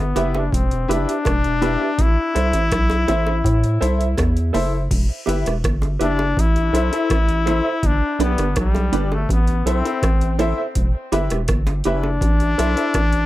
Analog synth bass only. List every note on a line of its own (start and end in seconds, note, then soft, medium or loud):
0.00 0.14 G1 loud
0.16 0.50 F#1 medium
0.53 0.86 E1 loud
0.89 1.06 F#1 loud
1.26 1.77 E1 loud
1.99 2.16 A1 loud
2.36 2.52 C2 medium
2.54 2.70 A1 medium
2.72 3.06 B1 loud
3.09 3.42 A1 medium
3.45 3.78 A2 loud
3.82 4.15 C2 loud
4.18 4.52 E2 loud
4.55 4.88 F#1 loud
4.91 5.08 E1 loud
5.28 5.45 G1 loud
5.47 5.63 E1 medium
5.64 5.98 G1 loud
6.01 6.34 F#1 medium
6.37 6.71 A1 loud
6.73 6.90 B1 loud
7.10 7.61 A1 loud
7.83 8.00 G1 loud
8.19 8.36 B1 medium
8.39 8.55 G1 medium
8.57 8.90 B1 loud
8.93 9.26 G1 loud
9.29 9.63 A1 loud
9.66 9.83 B1 medium
10.03 10.53 A1 loud
10.76 10.93 E1 loud
11.13 11.29 G1 loud
11.31 11.47 E1 loud
11.49 11.82 G1 loud
11.86 12.19 F#1 medium
12.21 12.55 A1 loud
12.59 12.75 B1 medium
12.95 13.26 A1 medium